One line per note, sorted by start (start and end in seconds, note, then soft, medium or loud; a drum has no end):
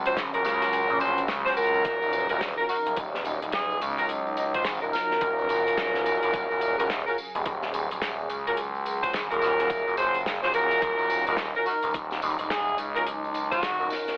0.00 0.15 C#2 medium
0.00 14.17 C#3 medium
0.00 14.17 F#3 medium
0.00 1.84 C#4 medium
0.06 0.16 C#4 medium
0.06 0.16 F4 medium
0.06 0.16 F#4 medium
0.06 0.16 C5 loud
0.06 closed hi-hat medium
0.06 tambourine soft
0.17 0.31 G#1 loud
0.17 snare loud
0.17 closed hi-hat medium
0.17 tambourine soft
0.33 0.43 D#1 loud
0.33 0.99 C#4 loud
0.33 0.99 F4 medium
0.33 0.99 F#4 medium
0.33 0.99 A#4 loud
0.33 closed hi-hat medium
0.33 tambourine soft
0.45 0.87 C#2 medium
0.45 snare soft
0.45 tambourine medium
0.61 snare soft
0.61 closed hi-hat medium
0.61 tambourine soft
0.73 closed hi-hat medium
0.73 tambourine soft
0.89 1.27 A#1 medium
0.89 tambourine soft
1.00 1.23 C#4 medium
1.00 1.23 F4 medium
1.00 1.23 F#4 medium
1.00 1.23 C5 medium
1.00 closed hi-hat medium
1.00 tambourine medium
1.18 closed hi-hat medium
1.18 tambourine soft
1.28 1.83 C#2 medium
1.28 snare loud
1.28 closed hi-hat medium
1.28 tambourine soft
1.46 1.55 C#4 loud
1.46 1.55 F4 medium
1.46 1.55 F#4 medium
1.46 1.55 C5 loud
1.46 snare soft
1.46 tambourine soft
1.57 2.26 C#4 loud
1.57 2.26 F4 medium
1.57 2.26 F#4 medium
1.57 2.26 A#4 loud
1.57 closed hi-hat soft
1.57 tambourine medium
1.63 closed hi-hat soft
1.66 closed hi-hat soft
1.74 tambourine soft
1.84 1.99 D#1 medium
1.84 6.33 D#4 medium
1.84 kick loud
1.84 closed hi-hat medium
1.84 tambourine soft
2.02 2.28 D#1 medium
2.02 tambourine soft
2.13 closed hi-hat medium
2.13 tambourine medium
2.29 2.56 D#1 loud
2.29 2.40 C#4 medium
2.29 2.40 F4 medium
2.29 2.40 F#4 medium
2.29 2.40 A#4 loud
2.29 closed hi-hat medium
2.29 tambourine soft
2.41 snare loud
2.41 closed hi-hat medium
2.41 tambourine soft
2.58 2.68 C#4 medium
2.58 2.68 F4 medium
2.58 2.68 F#4 medium
2.58 2.68 A#4 medium
2.58 tambourine soft
2.69 2.77 F#4 medium
2.69 2.95 A#4 medium
2.69 tambourine medium
2.86 2.95 D#1 medium
2.86 closed hi-hat medium
2.86 tambourine soft
2.97 3.23 D#1 loud
2.97 kick loud
2.97 closed hi-hat medium
2.97 tambourine soft
3.15 snare soft
3.15 tambourine soft
3.25 3.40 D#1 medium
3.25 closed hi-hat medium
3.25 tambourine medium
3.42 3.80 D#1 loud
3.42 closed hi-hat medium
3.42 tambourine soft
3.52 3.79 G#4 medium
3.52 snare loud
3.52 closed hi-hat medium
3.52 tambourine soft
3.70 tambourine soft
3.81 4.64 C#2 loud
3.81 closed hi-hat medium
3.81 tambourine medium
3.98 4.08 C#4 medium
3.98 4.08 F4 medium
3.98 4.08 F#4 medium
3.98 4.08 A#4 loud
3.98 closed hi-hat medium
3.98 tambourine soft
4.09 closed hi-hat medium
4.09 tambourine soft
4.27 tambourine soft
4.37 closed hi-hat medium
4.37 tambourine medium
4.54 4.64 C#4 medium
4.54 4.64 F4 medium
4.54 4.64 F#4 medium
4.54 4.64 C5 loud
4.54 kick medium
4.54 closed hi-hat medium
4.54 tambourine soft
4.56 tambourine soft
4.62 snare loud
4.62 tambourine soft
4.65 4.80 G#1 medium
4.65 closed hi-hat medium
4.65 tambourine soft
4.71 tambourine soft
4.75 tambourine soft
4.83 4.92 D#1 medium
4.83 6.75 C#4 loud
4.83 6.75 F4 medium
4.83 6.75 F#4 medium
4.83 6.75 A#4 loud
4.83 tambourine soft
4.93 5.39 A#4 medium
4.93 snare soft
4.93 tambourine medium
5.11 snare soft
5.21 5.48 D#1 loud
5.21 kick loud
5.21 closed hi-hat medium
5.21 tambourine soft
5.39 tambourine soft
5.49 5.64 G#1 loud
5.49 closed hi-hat medium
5.49 tambourine medium
5.67 6.04 D#1 medium
5.67 closed hi-hat medium
5.67 tambourine soft
5.77 snare loud
5.77 closed hi-hat medium
5.77 tambourine soft
5.94 snare soft
5.94 tambourine soft
6.06 6.20 D#1 loud
6.06 closed hi-hat medium
6.06 tambourine medium
6.23 6.32 F#1 loud
6.23 closed hi-hat medium
6.23 tambourine soft
6.34 6.48 D#1 loud
6.34 10.82 G#4 medium
6.34 kick loud
6.34 closed hi-hat medium
6.34 tambourine soft
6.51 6.76 D#1 medium
6.51 tambourine soft
6.61 closed hi-hat medium
6.61 tambourine medium
6.79 7.04 D#1 loud
6.79 6.89 C#4 medium
6.79 6.89 F4 medium
6.79 6.89 F#4 medium
6.79 6.89 A#4 loud
6.79 closed hi-hat medium
6.79 tambourine soft
6.90 snare loud
6.90 closed hi-hat medium
6.90 tambourine soft
7.07 7.17 C#4 medium
7.07 7.17 F4 medium
7.07 7.17 F#4 medium
7.07 7.17 A#4 medium
7.07 tambourine soft
7.18 tambourine medium
7.35 7.44 D#1 loud
7.35 closed hi-hat medium
7.35 tambourine soft
7.46 7.72 D#1 loud
7.46 kick loud
7.46 closed hi-hat medium
7.46 tambourine soft
7.62 snare soft
7.62 tambourine soft
7.74 7.88 D#1 loud
7.74 closed hi-hat medium
7.74 tambourine medium
7.91 8.28 D#1 loud
7.91 closed hi-hat medium
7.91 tambourine soft
8.02 snare loud
8.02 closed hi-hat medium
8.02 tambourine soft
8.19 tambourine soft
8.30 9.12 C#2 medium
8.30 closed hi-hat medium
8.30 tambourine medium
8.47 8.57 C#4 medium
8.47 8.57 F4 medium
8.47 8.57 F#4 medium
8.47 8.57 A#4 medium
8.47 closed hi-hat medium
8.47 tambourine soft
8.57 closed hi-hat medium
8.57 tambourine soft
8.75 tambourine soft
8.86 closed hi-hat medium
8.86 tambourine medium
9.03 9.13 C#4 medium
9.03 9.13 F4 medium
9.03 9.13 F#4 medium
9.03 9.13 C5 loud
9.03 kick medium
9.03 closed hi-hat medium
9.03 tambourine soft
9.13 9.29 G#1 loud
9.13 snare loud
9.13 closed hi-hat medium
9.13 tambourine soft
9.31 9.40 D#1 loud
9.31 9.96 C#4 medium
9.31 9.96 F4 medium
9.31 9.96 F#4 medium
9.31 9.96 A#4 loud
9.31 closed hi-hat medium
9.31 tambourine soft
9.42 9.85 D#1 loud
9.42 snare soft
9.42 tambourine medium
9.59 snare soft
9.59 closed hi-hat medium
9.59 tambourine soft
9.70 kick loud
9.70 closed hi-hat medium
9.70 tambourine soft
9.87 10.41 F#1 loud
9.87 tambourine soft
9.97 10.20 C#4 medium
9.97 10.20 F4 medium
9.97 10.20 F#4 medium
9.97 10.21 C5 medium
9.97 closed hi-hat medium
9.97 tambourine medium
10.14 closed hi-hat medium
10.14 tambourine soft
10.26 snare loud
10.26 closed hi-hat medium
10.26 tambourine soft
10.43 10.80 D#1 loud
10.43 10.52 C#4 medium
10.43 10.52 F4 medium
10.43 10.52 F#4 medium
10.43 10.52 C5 loud
10.43 snare soft
10.43 tambourine soft
10.54 11.23 C#4 loud
10.54 11.23 F4 medium
10.54 11.23 F#4 loud
10.54 11.23 A#4 loud
10.54 closed hi-hat medium
10.54 tambourine medium
10.71 closed hi-hat medium
10.71 tambourine soft
10.82 10.97 D#1 medium
10.82 14.17 D#4 loud
10.82 kick loud
10.82 closed hi-hat medium
10.82 tambourine soft
10.99 11.25 D#1 medium
10.99 tambourine soft
11.10 closed hi-hat medium
11.10 tambourine medium
11.27 11.53 D#1 loud
11.27 11.37 C#4 medium
11.27 11.37 F4 medium
11.27 11.37 F#4 medium
11.27 11.37 A#4 loud
11.27 closed hi-hat medium
11.27 tambourine soft
11.37 snare loud
11.37 closed hi-hat medium
11.37 tambourine soft
11.55 11.65 C#4 medium
11.55 11.65 F4 medium
11.55 11.65 F#4 medium
11.55 11.65 A#4 loud
11.55 tambourine soft
11.66 11.73 F#4 medium
11.66 11.92 A#4 medium
11.66 tambourine medium
11.83 11.93 D#1 loud
11.83 closed hi-hat medium
11.83 tambourine soft
11.94 12.21 D#1 medium
11.94 kick loud
11.94 closed hi-hat medium
11.94 tambourine soft
12.11 snare soft
12.11 tambourine soft
12.22 12.37 D#1 loud
12.22 closed hi-hat soft
12.22 tambourine medium
12.30 closed hi-hat soft
12.39 12.77 D#1 loud
12.39 closed hi-hat medium
12.39 closed hi-hat soft
12.39 tambourine soft
12.45 closed hi-hat soft
12.50 12.76 G#4 medium
12.50 snare loud
12.50 closed hi-hat medium
12.50 tambourine soft
12.67 tambourine soft
12.78 13.61 C#2 medium
12.78 closed hi-hat medium
12.78 tambourine medium
12.95 13.06 C#4 medium
12.95 13.06 F4 medium
12.95 13.06 F#4 medium
12.95 13.06 A#4 loud
12.95 closed hi-hat medium
12.95 tambourine soft
13.07 closed hi-hat medium
13.07 tambourine soft
13.24 tambourine soft
13.34 closed hi-hat soft
13.34 tambourine medium
13.52 13.62 C#4 loud
13.52 13.62 F4 medium
13.52 13.62 F#4 medium
13.52 13.91 F#4 loud
13.52 13.62 C5 loud
13.52 kick medium
13.52 closed hi-hat medium
13.52 tambourine soft
13.63 13.77 G#1 loud
13.63 snare loud
13.63 closed hi-hat medium
13.63 tambourine soft
13.80 13.89 D#1 loud
13.80 14.17 C#4 loud
13.80 14.17 F4 medium
13.80 14.17 F#4 medium
13.80 14.17 A#4 loud
13.80 tambourine soft
13.90 snare soft
13.90 tambourine medium
13.93 tambourine medium
13.96 tambourine soft
13.99 tambourine soft
14.05 snare soft
14.05 closed hi-hat medium
14.05 tambourine soft
14.09 tambourine soft